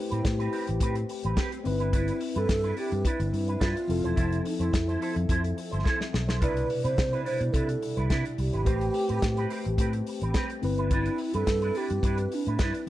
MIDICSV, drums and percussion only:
0, 0, Header, 1, 2, 480
1, 0, Start_track
1, 0, Key_signature, 0, "major"
1, 0, Tempo, 561272
1, 1650, Time_signature, 4, 2, 24, 8
1, 11024, End_track
2, 0, Start_track
2, 0, Title_t, "Drums"
2, 99, Note_on_c, 9, 42, 53
2, 184, Note_off_c, 9, 42, 0
2, 212, Note_on_c, 9, 36, 110
2, 214, Note_on_c, 9, 38, 93
2, 214, Note_on_c, 9, 42, 59
2, 297, Note_off_c, 9, 36, 0
2, 299, Note_off_c, 9, 42, 0
2, 300, Note_off_c, 9, 38, 0
2, 341, Note_on_c, 9, 42, 38
2, 427, Note_off_c, 9, 42, 0
2, 451, Note_on_c, 9, 46, 62
2, 537, Note_off_c, 9, 46, 0
2, 576, Note_on_c, 9, 42, 48
2, 661, Note_off_c, 9, 42, 0
2, 687, Note_on_c, 9, 36, 103
2, 691, Note_on_c, 9, 42, 85
2, 773, Note_off_c, 9, 36, 0
2, 776, Note_off_c, 9, 42, 0
2, 816, Note_on_c, 9, 42, 50
2, 901, Note_off_c, 9, 42, 0
2, 934, Note_on_c, 9, 46, 68
2, 1020, Note_off_c, 9, 46, 0
2, 1055, Note_on_c, 9, 42, 41
2, 1141, Note_off_c, 9, 42, 0
2, 1168, Note_on_c, 9, 42, 55
2, 1171, Note_on_c, 9, 36, 107
2, 1171, Note_on_c, 9, 38, 102
2, 1254, Note_off_c, 9, 42, 0
2, 1256, Note_off_c, 9, 36, 0
2, 1256, Note_off_c, 9, 38, 0
2, 1302, Note_on_c, 9, 42, 49
2, 1387, Note_off_c, 9, 42, 0
2, 1413, Note_on_c, 9, 46, 66
2, 1499, Note_off_c, 9, 46, 0
2, 1540, Note_on_c, 9, 42, 39
2, 1625, Note_off_c, 9, 42, 0
2, 1652, Note_on_c, 9, 36, 99
2, 1652, Note_on_c, 9, 42, 62
2, 1737, Note_off_c, 9, 36, 0
2, 1738, Note_off_c, 9, 42, 0
2, 1777, Note_on_c, 9, 42, 44
2, 1862, Note_off_c, 9, 42, 0
2, 1886, Note_on_c, 9, 46, 72
2, 1972, Note_off_c, 9, 46, 0
2, 2016, Note_on_c, 9, 42, 51
2, 2101, Note_off_c, 9, 42, 0
2, 2130, Note_on_c, 9, 36, 109
2, 2130, Note_on_c, 9, 38, 92
2, 2130, Note_on_c, 9, 42, 65
2, 2215, Note_off_c, 9, 42, 0
2, 2216, Note_off_c, 9, 36, 0
2, 2216, Note_off_c, 9, 38, 0
2, 2255, Note_on_c, 9, 42, 35
2, 2341, Note_off_c, 9, 42, 0
2, 2366, Note_on_c, 9, 46, 64
2, 2452, Note_off_c, 9, 46, 0
2, 2494, Note_on_c, 9, 42, 46
2, 2580, Note_off_c, 9, 42, 0
2, 2606, Note_on_c, 9, 36, 102
2, 2610, Note_on_c, 9, 42, 81
2, 2692, Note_off_c, 9, 36, 0
2, 2696, Note_off_c, 9, 42, 0
2, 2736, Note_on_c, 9, 42, 48
2, 2822, Note_off_c, 9, 42, 0
2, 2854, Note_on_c, 9, 46, 65
2, 2939, Note_off_c, 9, 46, 0
2, 2975, Note_on_c, 9, 42, 40
2, 3061, Note_off_c, 9, 42, 0
2, 3089, Note_on_c, 9, 36, 109
2, 3089, Note_on_c, 9, 42, 60
2, 3092, Note_on_c, 9, 38, 98
2, 3175, Note_off_c, 9, 36, 0
2, 3175, Note_off_c, 9, 42, 0
2, 3177, Note_off_c, 9, 38, 0
2, 3222, Note_on_c, 9, 42, 49
2, 3308, Note_off_c, 9, 42, 0
2, 3334, Note_on_c, 9, 46, 67
2, 3419, Note_off_c, 9, 46, 0
2, 3462, Note_on_c, 9, 42, 42
2, 3547, Note_off_c, 9, 42, 0
2, 3569, Note_on_c, 9, 36, 104
2, 3570, Note_on_c, 9, 42, 62
2, 3654, Note_off_c, 9, 36, 0
2, 3655, Note_off_c, 9, 42, 0
2, 3698, Note_on_c, 9, 42, 41
2, 3784, Note_off_c, 9, 42, 0
2, 3809, Note_on_c, 9, 46, 76
2, 3894, Note_off_c, 9, 46, 0
2, 3939, Note_on_c, 9, 42, 51
2, 4024, Note_off_c, 9, 42, 0
2, 4049, Note_on_c, 9, 36, 104
2, 4051, Note_on_c, 9, 42, 64
2, 4052, Note_on_c, 9, 38, 96
2, 4134, Note_off_c, 9, 36, 0
2, 4137, Note_off_c, 9, 38, 0
2, 4137, Note_off_c, 9, 42, 0
2, 4181, Note_on_c, 9, 42, 33
2, 4267, Note_off_c, 9, 42, 0
2, 4293, Note_on_c, 9, 46, 61
2, 4378, Note_off_c, 9, 46, 0
2, 4415, Note_on_c, 9, 42, 41
2, 4500, Note_off_c, 9, 42, 0
2, 4525, Note_on_c, 9, 36, 112
2, 4531, Note_on_c, 9, 42, 83
2, 4610, Note_off_c, 9, 36, 0
2, 4617, Note_off_c, 9, 42, 0
2, 4655, Note_on_c, 9, 42, 45
2, 4740, Note_off_c, 9, 42, 0
2, 4771, Note_on_c, 9, 46, 63
2, 4856, Note_off_c, 9, 46, 0
2, 4895, Note_on_c, 9, 42, 39
2, 4981, Note_off_c, 9, 42, 0
2, 5007, Note_on_c, 9, 36, 105
2, 5011, Note_on_c, 9, 38, 52
2, 5092, Note_off_c, 9, 36, 0
2, 5097, Note_off_c, 9, 38, 0
2, 5138, Note_on_c, 9, 38, 60
2, 5224, Note_off_c, 9, 38, 0
2, 5252, Note_on_c, 9, 38, 87
2, 5338, Note_off_c, 9, 38, 0
2, 5377, Note_on_c, 9, 38, 78
2, 5463, Note_off_c, 9, 38, 0
2, 5489, Note_on_c, 9, 36, 106
2, 5491, Note_on_c, 9, 42, 67
2, 5574, Note_off_c, 9, 36, 0
2, 5576, Note_off_c, 9, 42, 0
2, 5617, Note_on_c, 9, 42, 42
2, 5702, Note_off_c, 9, 42, 0
2, 5729, Note_on_c, 9, 46, 74
2, 5814, Note_off_c, 9, 46, 0
2, 5857, Note_on_c, 9, 42, 52
2, 5943, Note_off_c, 9, 42, 0
2, 5970, Note_on_c, 9, 36, 113
2, 5971, Note_on_c, 9, 38, 104
2, 5971, Note_on_c, 9, 42, 55
2, 6055, Note_off_c, 9, 36, 0
2, 6056, Note_off_c, 9, 42, 0
2, 6057, Note_off_c, 9, 38, 0
2, 6099, Note_on_c, 9, 42, 36
2, 6185, Note_off_c, 9, 42, 0
2, 6211, Note_on_c, 9, 46, 60
2, 6296, Note_off_c, 9, 46, 0
2, 6335, Note_on_c, 9, 42, 46
2, 6420, Note_off_c, 9, 42, 0
2, 6446, Note_on_c, 9, 36, 103
2, 6450, Note_on_c, 9, 42, 76
2, 6532, Note_off_c, 9, 36, 0
2, 6535, Note_off_c, 9, 42, 0
2, 6575, Note_on_c, 9, 42, 49
2, 6660, Note_off_c, 9, 42, 0
2, 6692, Note_on_c, 9, 46, 58
2, 6777, Note_off_c, 9, 46, 0
2, 6816, Note_on_c, 9, 42, 34
2, 6902, Note_off_c, 9, 42, 0
2, 6927, Note_on_c, 9, 42, 55
2, 6929, Note_on_c, 9, 36, 91
2, 6929, Note_on_c, 9, 38, 91
2, 7012, Note_off_c, 9, 42, 0
2, 7014, Note_off_c, 9, 36, 0
2, 7015, Note_off_c, 9, 38, 0
2, 7058, Note_on_c, 9, 42, 50
2, 7144, Note_off_c, 9, 42, 0
2, 7169, Note_on_c, 9, 46, 56
2, 7255, Note_off_c, 9, 46, 0
2, 7297, Note_on_c, 9, 42, 37
2, 7383, Note_off_c, 9, 42, 0
2, 7409, Note_on_c, 9, 36, 104
2, 7409, Note_on_c, 9, 42, 63
2, 7495, Note_off_c, 9, 36, 0
2, 7495, Note_off_c, 9, 42, 0
2, 7535, Note_on_c, 9, 42, 38
2, 7621, Note_off_c, 9, 42, 0
2, 7645, Note_on_c, 9, 46, 74
2, 7731, Note_off_c, 9, 46, 0
2, 7774, Note_on_c, 9, 42, 54
2, 7860, Note_off_c, 9, 42, 0
2, 7887, Note_on_c, 9, 42, 60
2, 7888, Note_on_c, 9, 38, 97
2, 7889, Note_on_c, 9, 36, 98
2, 7973, Note_off_c, 9, 42, 0
2, 7974, Note_off_c, 9, 36, 0
2, 7974, Note_off_c, 9, 38, 0
2, 8013, Note_on_c, 9, 42, 38
2, 8099, Note_off_c, 9, 42, 0
2, 8126, Note_on_c, 9, 46, 61
2, 8212, Note_off_c, 9, 46, 0
2, 8254, Note_on_c, 9, 42, 47
2, 8339, Note_off_c, 9, 42, 0
2, 8365, Note_on_c, 9, 36, 107
2, 8367, Note_on_c, 9, 42, 83
2, 8451, Note_off_c, 9, 36, 0
2, 8453, Note_off_c, 9, 42, 0
2, 8492, Note_on_c, 9, 42, 49
2, 8578, Note_off_c, 9, 42, 0
2, 8608, Note_on_c, 9, 46, 64
2, 8694, Note_off_c, 9, 46, 0
2, 8733, Note_on_c, 9, 42, 41
2, 8818, Note_off_c, 9, 42, 0
2, 8843, Note_on_c, 9, 42, 55
2, 8846, Note_on_c, 9, 38, 104
2, 8848, Note_on_c, 9, 36, 106
2, 8929, Note_off_c, 9, 42, 0
2, 8931, Note_off_c, 9, 38, 0
2, 8933, Note_off_c, 9, 36, 0
2, 8978, Note_on_c, 9, 42, 51
2, 9063, Note_off_c, 9, 42, 0
2, 9087, Note_on_c, 9, 46, 56
2, 9173, Note_off_c, 9, 46, 0
2, 9217, Note_on_c, 9, 42, 38
2, 9302, Note_off_c, 9, 42, 0
2, 9328, Note_on_c, 9, 42, 67
2, 9329, Note_on_c, 9, 36, 118
2, 9413, Note_off_c, 9, 42, 0
2, 9415, Note_off_c, 9, 36, 0
2, 9454, Note_on_c, 9, 42, 42
2, 9540, Note_off_c, 9, 42, 0
2, 9563, Note_on_c, 9, 46, 71
2, 9648, Note_off_c, 9, 46, 0
2, 9695, Note_on_c, 9, 42, 52
2, 9780, Note_off_c, 9, 42, 0
2, 9809, Note_on_c, 9, 42, 63
2, 9810, Note_on_c, 9, 38, 104
2, 9811, Note_on_c, 9, 36, 95
2, 9895, Note_off_c, 9, 38, 0
2, 9895, Note_off_c, 9, 42, 0
2, 9896, Note_off_c, 9, 36, 0
2, 9936, Note_on_c, 9, 42, 38
2, 10021, Note_off_c, 9, 42, 0
2, 10047, Note_on_c, 9, 46, 62
2, 10132, Note_off_c, 9, 46, 0
2, 10176, Note_on_c, 9, 42, 47
2, 10261, Note_off_c, 9, 42, 0
2, 10287, Note_on_c, 9, 36, 109
2, 10292, Note_on_c, 9, 42, 77
2, 10373, Note_off_c, 9, 36, 0
2, 10378, Note_off_c, 9, 42, 0
2, 10414, Note_on_c, 9, 42, 44
2, 10500, Note_off_c, 9, 42, 0
2, 10533, Note_on_c, 9, 46, 66
2, 10619, Note_off_c, 9, 46, 0
2, 10654, Note_on_c, 9, 42, 36
2, 10740, Note_off_c, 9, 42, 0
2, 10765, Note_on_c, 9, 42, 60
2, 10767, Note_on_c, 9, 38, 103
2, 10770, Note_on_c, 9, 36, 109
2, 10850, Note_off_c, 9, 42, 0
2, 10853, Note_off_c, 9, 38, 0
2, 10855, Note_off_c, 9, 36, 0
2, 10899, Note_on_c, 9, 42, 49
2, 10985, Note_off_c, 9, 42, 0
2, 11024, End_track
0, 0, End_of_file